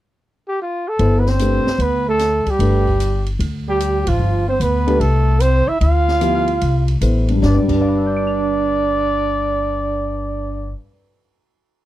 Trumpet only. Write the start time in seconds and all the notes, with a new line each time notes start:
0.48 G4
0.62 F4
0.88 A4
1.19 B4
1.29 C5
1.82 B4
2.09 A4
2.50 G4
3.69 G4
4.09 F4
4.49 C5
4.62 B4
5.00 A4
5.41 C5
5.68 E5
5.81 F5
7.44 D5
7.71 D5